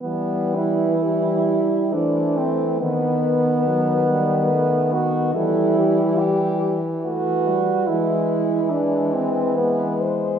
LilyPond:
<<
  \new Staff \with { instrumentName = "French horn" } { \time 3/4 \key e \minor \tempo 4 = 70 b'4 g'4 c''4 | b'4 b'2 | a'8 g'4 r8 b'4~ | b'2 b'8 c''8 | }
  \new Staff \with { instrumentName = "French horn" } { \time 3/4 \key e \minor b8 e'4. d'8 c'8 | b2~ b8 fis'8 | e'4 g'8 r8 fis'4 | e'4 d'8 c'8 b8 r8 | }
  \new Staff \with { instrumentName = "French horn" } { \clef bass \time 3/4 \key e \minor g4 g4 a4 | b4 fis8 g8 a8 b8 | g4. r8 a8 g8 | gis4 gis4 gis4 | }
  \new Staff \with { instrumentName = "French horn" } { \clef bass \time 3/4 \key e \minor e2 e4 | dis2. | e2~ e8 r8 | e2. | }
>>